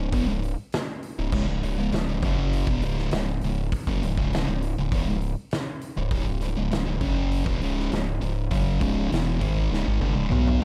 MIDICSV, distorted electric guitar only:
0, 0, Header, 1, 2, 480
1, 0, Start_track
1, 0, Key_signature, 4, "minor"
1, 0, Tempo, 598802
1, 1061, Time_signature, 4, 2, 24, 8
1, 8529, End_track
2, 0, Start_track
2, 0, Title_t, "Distorted electric guitar"
2, 0, Program_c, 0, 30
2, 0, Note_on_c, 0, 37, 67
2, 0, Note_on_c, 0, 44, 72
2, 97, Note_off_c, 0, 37, 0
2, 100, Note_on_c, 0, 40, 95
2, 101, Note_off_c, 0, 44, 0
2, 106, Note_on_c, 0, 47, 101
2, 213, Note_off_c, 0, 40, 0
2, 216, Note_off_c, 0, 47, 0
2, 221, Note_on_c, 0, 37, 69
2, 225, Note_on_c, 0, 44, 73
2, 413, Note_off_c, 0, 37, 0
2, 415, Note_off_c, 0, 44, 0
2, 950, Note_on_c, 0, 37, 70
2, 953, Note_on_c, 0, 44, 74
2, 1059, Note_off_c, 0, 37, 0
2, 1062, Note_off_c, 0, 44, 0
2, 1069, Note_on_c, 0, 37, 83
2, 1072, Note_on_c, 0, 44, 102
2, 1170, Note_off_c, 0, 37, 0
2, 1173, Note_off_c, 0, 44, 0
2, 1179, Note_on_c, 0, 37, 71
2, 1183, Note_on_c, 0, 44, 71
2, 1298, Note_off_c, 0, 37, 0
2, 1300, Note_off_c, 0, 44, 0
2, 1307, Note_on_c, 0, 37, 74
2, 1309, Note_on_c, 0, 44, 79
2, 1421, Note_off_c, 0, 37, 0
2, 1425, Note_off_c, 0, 44, 0
2, 1430, Note_on_c, 0, 37, 59
2, 1435, Note_on_c, 0, 44, 68
2, 1538, Note_off_c, 0, 37, 0
2, 1542, Note_off_c, 0, 44, 0
2, 1547, Note_on_c, 0, 37, 67
2, 1552, Note_on_c, 0, 44, 69
2, 1665, Note_off_c, 0, 37, 0
2, 1667, Note_off_c, 0, 44, 0
2, 1676, Note_on_c, 0, 37, 69
2, 1680, Note_on_c, 0, 44, 68
2, 1789, Note_off_c, 0, 37, 0
2, 1791, Note_off_c, 0, 44, 0
2, 1795, Note_on_c, 0, 42, 84
2, 1797, Note_on_c, 0, 49, 92
2, 1802, Note_on_c, 0, 54, 103
2, 2141, Note_off_c, 0, 42, 0
2, 2142, Note_off_c, 0, 49, 0
2, 2145, Note_off_c, 0, 54, 0
2, 2157, Note_on_c, 0, 40, 92
2, 2163, Note_on_c, 0, 47, 105
2, 2262, Note_off_c, 0, 40, 0
2, 2265, Note_off_c, 0, 47, 0
2, 2270, Note_on_c, 0, 37, 88
2, 2272, Note_on_c, 0, 44, 95
2, 2275, Note_on_c, 0, 49, 109
2, 2499, Note_off_c, 0, 37, 0
2, 2500, Note_off_c, 0, 44, 0
2, 2501, Note_off_c, 0, 49, 0
2, 2511, Note_on_c, 0, 37, 60
2, 2517, Note_on_c, 0, 44, 80
2, 2698, Note_off_c, 0, 37, 0
2, 2702, Note_off_c, 0, 44, 0
2, 2758, Note_on_c, 0, 37, 67
2, 2760, Note_on_c, 0, 44, 69
2, 2942, Note_off_c, 0, 37, 0
2, 2943, Note_off_c, 0, 44, 0
2, 3110, Note_on_c, 0, 42, 89
2, 3115, Note_on_c, 0, 49, 104
2, 3219, Note_off_c, 0, 42, 0
2, 3221, Note_off_c, 0, 49, 0
2, 3231, Note_on_c, 0, 37, 69
2, 3236, Note_on_c, 0, 44, 74
2, 3339, Note_off_c, 0, 37, 0
2, 3344, Note_off_c, 0, 44, 0
2, 3349, Note_on_c, 0, 37, 81
2, 3354, Note_on_c, 0, 44, 89
2, 3359, Note_on_c, 0, 49, 96
2, 3578, Note_off_c, 0, 37, 0
2, 3580, Note_off_c, 0, 44, 0
2, 3583, Note_off_c, 0, 49, 0
2, 3591, Note_on_c, 0, 37, 63
2, 3593, Note_on_c, 0, 44, 72
2, 3778, Note_off_c, 0, 37, 0
2, 3779, Note_off_c, 0, 44, 0
2, 3833, Note_on_c, 0, 37, 68
2, 3836, Note_on_c, 0, 44, 74
2, 3947, Note_off_c, 0, 37, 0
2, 3949, Note_off_c, 0, 44, 0
2, 3950, Note_on_c, 0, 40, 93
2, 3956, Note_on_c, 0, 47, 105
2, 4058, Note_off_c, 0, 40, 0
2, 4062, Note_off_c, 0, 47, 0
2, 4068, Note_on_c, 0, 37, 65
2, 4072, Note_on_c, 0, 44, 79
2, 4257, Note_off_c, 0, 37, 0
2, 4259, Note_off_c, 0, 44, 0
2, 4785, Note_on_c, 0, 37, 66
2, 4790, Note_on_c, 0, 44, 70
2, 4889, Note_off_c, 0, 44, 0
2, 4891, Note_off_c, 0, 37, 0
2, 4899, Note_on_c, 0, 44, 108
2, 4900, Note_on_c, 0, 37, 97
2, 5013, Note_off_c, 0, 37, 0
2, 5013, Note_off_c, 0, 44, 0
2, 5028, Note_on_c, 0, 37, 64
2, 5030, Note_on_c, 0, 44, 70
2, 5137, Note_off_c, 0, 37, 0
2, 5138, Note_off_c, 0, 44, 0
2, 5147, Note_on_c, 0, 37, 68
2, 5148, Note_on_c, 0, 44, 77
2, 5254, Note_off_c, 0, 37, 0
2, 5258, Note_off_c, 0, 44, 0
2, 5264, Note_on_c, 0, 37, 62
2, 5268, Note_on_c, 0, 44, 73
2, 5370, Note_off_c, 0, 37, 0
2, 5374, Note_off_c, 0, 44, 0
2, 5380, Note_on_c, 0, 37, 66
2, 5383, Note_on_c, 0, 44, 72
2, 5489, Note_off_c, 0, 37, 0
2, 5493, Note_off_c, 0, 44, 0
2, 5499, Note_on_c, 0, 37, 73
2, 5503, Note_on_c, 0, 44, 75
2, 5614, Note_off_c, 0, 37, 0
2, 5616, Note_off_c, 0, 44, 0
2, 5617, Note_on_c, 0, 42, 90
2, 5619, Note_on_c, 0, 49, 89
2, 5624, Note_on_c, 0, 54, 103
2, 5971, Note_off_c, 0, 42, 0
2, 5973, Note_off_c, 0, 49, 0
2, 5974, Note_on_c, 0, 40, 98
2, 5975, Note_off_c, 0, 54, 0
2, 5980, Note_on_c, 0, 47, 104
2, 6090, Note_off_c, 0, 40, 0
2, 6093, Note_off_c, 0, 47, 0
2, 6104, Note_on_c, 0, 37, 92
2, 6110, Note_on_c, 0, 44, 90
2, 6112, Note_on_c, 0, 49, 105
2, 6334, Note_off_c, 0, 37, 0
2, 6338, Note_off_c, 0, 44, 0
2, 6339, Note_off_c, 0, 49, 0
2, 6343, Note_on_c, 0, 37, 64
2, 6347, Note_on_c, 0, 44, 70
2, 6534, Note_off_c, 0, 37, 0
2, 6536, Note_off_c, 0, 44, 0
2, 6580, Note_on_c, 0, 37, 64
2, 6585, Note_on_c, 0, 44, 74
2, 6773, Note_off_c, 0, 37, 0
2, 6775, Note_off_c, 0, 44, 0
2, 6818, Note_on_c, 0, 42, 84
2, 6824, Note_on_c, 0, 54, 104
2, 6825, Note_on_c, 0, 49, 90
2, 7051, Note_off_c, 0, 42, 0
2, 7054, Note_off_c, 0, 49, 0
2, 7054, Note_on_c, 0, 37, 94
2, 7055, Note_off_c, 0, 54, 0
2, 7058, Note_on_c, 0, 44, 99
2, 7063, Note_on_c, 0, 49, 102
2, 7290, Note_off_c, 0, 37, 0
2, 7292, Note_off_c, 0, 44, 0
2, 7295, Note_off_c, 0, 49, 0
2, 7299, Note_on_c, 0, 40, 94
2, 7303, Note_on_c, 0, 47, 89
2, 7309, Note_on_c, 0, 52, 105
2, 7533, Note_off_c, 0, 40, 0
2, 7535, Note_off_c, 0, 47, 0
2, 7538, Note_off_c, 0, 52, 0
2, 7545, Note_on_c, 0, 44, 89
2, 7546, Note_on_c, 0, 51, 97
2, 7548, Note_on_c, 0, 56, 94
2, 7776, Note_off_c, 0, 44, 0
2, 7777, Note_off_c, 0, 51, 0
2, 7777, Note_off_c, 0, 56, 0
2, 7784, Note_on_c, 0, 37, 94
2, 7791, Note_on_c, 0, 44, 102
2, 7896, Note_off_c, 0, 37, 0
2, 7899, Note_off_c, 0, 44, 0
2, 7908, Note_on_c, 0, 44, 94
2, 7910, Note_on_c, 0, 51, 101
2, 8018, Note_off_c, 0, 44, 0
2, 8019, Note_off_c, 0, 51, 0
2, 8024, Note_on_c, 0, 43, 84
2, 8025, Note_on_c, 0, 50, 108
2, 8136, Note_off_c, 0, 43, 0
2, 8136, Note_off_c, 0, 50, 0
2, 8140, Note_on_c, 0, 37, 85
2, 8145, Note_on_c, 0, 44, 93
2, 8254, Note_off_c, 0, 37, 0
2, 8257, Note_off_c, 0, 44, 0
2, 8257, Note_on_c, 0, 47, 92
2, 8263, Note_on_c, 0, 54, 95
2, 8264, Note_on_c, 0, 59, 105
2, 8493, Note_off_c, 0, 47, 0
2, 8496, Note_off_c, 0, 54, 0
2, 8496, Note_off_c, 0, 59, 0
2, 8501, Note_on_c, 0, 37, 89
2, 8504, Note_on_c, 0, 44, 102
2, 8529, Note_off_c, 0, 37, 0
2, 8529, Note_off_c, 0, 44, 0
2, 8529, End_track
0, 0, End_of_file